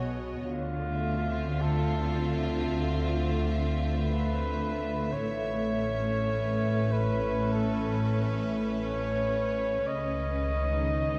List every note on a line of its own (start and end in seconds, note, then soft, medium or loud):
0.00 0.40 B1 medium
0.00 0.47 B2 medium
0.00 0.46 B3 medium
0.00 0.16 F#4 medium
0.00 0.45 F#4 medium
0.00 0.47 C#5 medium
0.00 0.47 D#5 medium
0.42 5.11 D2 medium
0.42 1.62 F4 medium
0.49 5.18 D3 medium
0.75 9.88 A3 medium
0.94 9.86 E5 medium
1.04 5.17 C4 medium
1.12 5.15 F4 medium
1.61 2.80 A4 medium
3.96 5.14 B4 medium
5.12 6.93 C#5 medium
5.16 9.81 A1 medium
5.16 9.88 A2 medium
5.68 11.19 C#4 medium
6.26 11.19 B4 medium
6.92 7.53 B4 medium
7.52 8.43 A4 medium
8.70 9.89 C#5 loud
9.87 11.19 C#2 medium
9.87 11.19 C#3 medium
9.87 11.19 D#5 loud
10.20 11.19 D#3 medium
10.65 11.19 D#4 medium